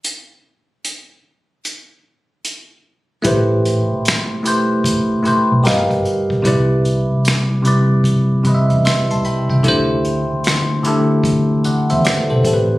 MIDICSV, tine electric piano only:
0, 0, Header, 1, 2, 480
1, 0, Start_track
1, 0, Key_signature, 0, "minor"
1, 0, Tempo, 800000
1, 28, Time_signature, 4, 2, 24, 8
1, 7671, End_track
2, 0, Start_track
2, 0, Title_t, "Tine electric piano"
2, 0, Program_c, 0, 4
2, 1934, Note_on_c, 0, 57, 71
2, 1942, Note_on_c, 0, 64, 78
2, 1950, Note_on_c, 0, 67, 77
2, 1956, Note_on_c, 0, 71, 74
2, 1962, Note_on_c, 0, 72, 80
2, 2052, Control_c, 0, 64, 127
2, 2597, Note_off_c, 0, 57, 0
2, 2601, Note_off_c, 0, 64, 0
2, 2605, Note_off_c, 0, 67, 0
2, 2608, Note_off_c, 0, 71, 0
2, 2611, Note_off_c, 0, 72, 0
2, 2657, Note_on_c, 0, 57, 67
2, 2666, Note_on_c, 0, 64, 66
2, 2672, Note_on_c, 0, 67, 62
2, 2680, Note_on_c, 0, 71, 64
2, 2686, Note_on_c, 0, 72, 75
2, 3100, Note_off_c, 0, 57, 0
2, 3104, Note_off_c, 0, 64, 0
2, 3107, Note_off_c, 0, 67, 0
2, 3111, Note_off_c, 0, 71, 0
2, 3114, Note_off_c, 0, 72, 0
2, 3136, Note_on_c, 0, 57, 68
2, 3144, Note_on_c, 0, 64, 61
2, 3151, Note_on_c, 0, 67, 54
2, 3159, Note_on_c, 0, 71, 61
2, 3166, Note_on_c, 0, 72, 66
2, 3375, Note_off_c, 0, 67, 0
2, 3377, Note_on_c, 0, 55, 67
2, 3382, Note_off_c, 0, 57, 0
2, 3383, Note_on_c, 0, 67, 68
2, 3386, Note_off_c, 0, 64, 0
2, 3387, Note_off_c, 0, 71, 0
2, 3388, Note_on_c, 0, 70, 63
2, 3394, Note_on_c, 0, 71, 61
2, 3395, Control_c, 0, 64, 0
2, 3397, Note_off_c, 0, 72, 0
2, 3399, Note_on_c, 0, 75, 64
2, 3405, Note_on_c, 0, 77, 79
2, 3484, Control_c, 0, 64, 127
2, 3820, Note_off_c, 0, 55, 0
2, 3823, Note_off_c, 0, 67, 0
2, 3825, Note_off_c, 0, 70, 0
2, 3828, Note_off_c, 0, 71, 0
2, 3831, Note_off_c, 0, 75, 0
2, 3834, Note_off_c, 0, 77, 0
2, 3854, Note_on_c, 0, 48, 80
2, 3862, Note_on_c, 0, 55, 75
2, 3870, Note_on_c, 0, 64, 78
2, 3876, Control_c, 0, 64, 0
2, 3877, Note_on_c, 0, 71, 72
2, 3885, Note_on_c, 0, 74, 90
2, 3971, Control_c, 0, 64, 127
2, 4517, Note_off_c, 0, 48, 0
2, 4521, Note_off_c, 0, 55, 0
2, 4525, Note_off_c, 0, 64, 0
2, 4529, Note_off_c, 0, 71, 0
2, 4533, Note_off_c, 0, 74, 0
2, 4575, Note_on_c, 0, 48, 72
2, 4583, Note_on_c, 0, 55, 68
2, 4591, Note_on_c, 0, 64, 67
2, 4598, Note_on_c, 0, 71, 64
2, 4606, Note_on_c, 0, 74, 83
2, 5019, Note_off_c, 0, 48, 0
2, 5023, Note_off_c, 0, 55, 0
2, 5027, Note_off_c, 0, 64, 0
2, 5030, Note_off_c, 0, 71, 0
2, 5034, Note_off_c, 0, 74, 0
2, 5060, Note_on_c, 0, 48, 68
2, 5067, Note_on_c, 0, 55, 59
2, 5074, Note_on_c, 0, 64, 56
2, 5081, Note_on_c, 0, 71, 52
2, 5087, Note_on_c, 0, 75, 47
2, 5127, Note_off_c, 0, 75, 0
2, 5127, Note_on_c, 0, 76, 68
2, 5313, Note_on_c, 0, 88, 49
2, 5314, Note_on_c, 0, 84, 42
2, 5337, Note_off_c, 0, 76, 0
2, 5454, Note_off_c, 0, 84, 0
2, 5454, Note_off_c, 0, 88, 0
2, 5465, Note_on_c, 0, 84, 59
2, 5467, Note_on_c, 0, 81, 53
2, 5546, Note_off_c, 0, 84, 0
2, 5547, Note_off_c, 0, 81, 0
2, 5550, Note_on_c, 0, 83, 60
2, 5555, Note_on_c, 0, 79, 44
2, 5692, Note_off_c, 0, 83, 0
2, 5694, Note_off_c, 0, 79, 0
2, 5701, Note_on_c, 0, 79, 48
2, 5704, Note_on_c, 0, 76, 42
2, 5720, Note_off_c, 0, 48, 0
2, 5724, Note_off_c, 0, 55, 0
2, 5727, Note_off_c, 0, 64, 0
2, 5731, Note_off_c, 0, 71, 0
2, 5779, Note_on_c, 0, 50, 90
2, 5786, Note_on_c, 0, 57, 76
2, 5794, Note_on_c, 0, 64, 83
2, 5796, Control_c, 0, 64, 0
2, 5801, Note_on_c, 0, 67, 69
2, 5810, Note_on_c, 0, 72, 104
2, 5913, Control_c, 0, 64, 127
2, 5928, Note_off_c, 0, 79, 0
2, 5929, Note_off_c, 0, 76, 0
2, 6440, Note_off_c, 0, 50, 0
2, 6443, Note_off_c, 0, 57, 0
2, 6447, Note_off_c, 0, 64, 0
2, 6451, Note_off_c, 0, 67, 0
2, 6455, Note_off_c, 0, 72, 0
2, 6498, Note_on_c, 0, 50, 76
2, 6505, Note_on_c, 0, 57, 68
2, 6512, Note_on_c, 0, 64, 69
2, 6519, Note_on_c, 0, 67, 72
2, 6526, Note_on_c, 0, 69, 79
2, 6940, Note_off_c, 0, 50, 0
2, 6944, Note_off_c, 0, 57, 0
2, 6947, Note_off_c, 0, 64, 0
2, 6951, Note_off_c, 0, 67, 0
2, 6954, Note_off_c, 0, 69, 0
2, 6992, Note_on_c, 0, 78, 48
2, 6995, Note_on_c, 0, 74, 39
2, 7133, Note_off_c, 0, 78, 0
2, 7135, Note_off_c, 0, 74, 0
2, 7140, Note_on_c, 0, 76, 61
2, 7144, Note_on_c, 0, 72, 51
2, 7224, Note_off_c, 0, 76, 0
2, 7226, Note_off_c, 0, 72, 0
2, 7230, Note_on_c, 0, 74, 56
2, 7235, Note_on_c, 0, 71, 45
2, 7372, Note_off_c, 0, 74, 0
2, 7375, Note_off_c, 0, 71, 0
2, 7380, Note_on_c, 0, 72, 56
2, 7383, Note_on_c, 0, 69, 49
2, 7453, Note_on_c, 0, 45, 58
2, 7460, Note_on_c, 0, 57, 58
2, 7467, Note_on_c, 0, 60, 66
2, 7474, Note_off_c, 0, 69, 0
2, 7474, Note_on_c, 0, 67, 57
2, 7476, Control_c, 0, 64, 0
2, 7482, Note_on_c, 0, 69, 59
2, 7521, Note_on_c, 0, 71, 77
2, 7524, Note_off_c, 0, 69, 0
2, 7562, Control_c, 0, 64, 127
2, 7607, Note_off_c, 0, 72, 0
2, 7671, Note_off_c, 0, 45, 0
2, 7671, Note_off_c, 0, 57, 0
2, 7671, Note_off_c, 0, 60, 0
2, 7671, Note_off_c, 0, 67, 0
2, 7671, Note_off_c, 0, 71, 0
2, 7671, End_track
0, 0, End_of_file